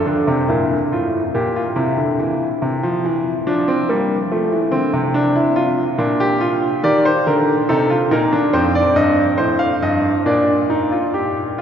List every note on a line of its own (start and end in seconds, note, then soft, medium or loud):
0.06 0.27 D3 medium
0.06 0.33 D4 soft
0.27 0.48 C3 medium
0.48 0.76 A#2 medium
0.48 0.75 E4 medium
0.92 1.18 A2 medium
0.92 1.19 F4 medium
1.34 1.61 A#2 medium
1.34 1.55 G4 medium
1.56 1.77 F4 medium
1.76 1.97 C3 medium
1.76 3.41 E4 medium
1.97 2.18 D3 medium
2.19 2.45 E3 medium
2.62 2.82 C3 medium
2.83 3.03 F3 medium
3.05 3.31 E3 medium
3.47 3.73 F3 medium
3.47 3.67 D4 medium
3.68 3.88 C4 medium
3.89 4.15 G3 medium
3.89 4.15 A#3 medium
4.32 4.51 F3 medium
4.32 4.57 A3 medium
4.52 4.72 E3 medium
4.72 4.92 D3 medium
4.72 4.98 C4 medium
4.93 5.95 C3 medium
5.14 5.35 D4 medium
5.36 5.56 E4 medium
5.56 5.82 F4 medium
5.98 6.80 A#2 medium
5.98 6.19 D4 medium
6.20 6.40 G4 medium
6.41 6.67 F4 medium
6.83 7.10 D#3 medium
6.83 7.66 G4 medium
6.83 7.04 D5 medium
7.05 7.25 C5 medium
7.27 7.53 D3 medium
7.27 7.53 A#4 medium
7.69 7.95 C3 medium
7.69 7.89 D#4 medium
7.69 7.95 A4 medium
7.90 8.10 F4 medium
8.11 8.37 A#2 medium
8.11 8.31 D#4 medium
8.11 8.37 A#4 medium
8.33 8.53 D4 medium
8.53 8.80 F2 medium
8.53 10.22 C4 medium
8.53 8.74 C5 medium
8.75 8.95 D5 medium
8.96 9.23 G2 medium
8.96 9.23 D#5 medium
9.38 9.65 A2 medium
9.38 9.59 C5 medium
9.59 9.81 F5 medium
9.82 10.09 G2 medium
9.82 10.09 D#5 medium
10.26 11.62 A#2 medium
10.26 10.53 D4 medium
10.26 11.62 D5 medium
10.70 10.91 D#4 medium
10.92 11.13 F4 medium
11.14 11.41 G4 medium
11.58 11.62 F4 medium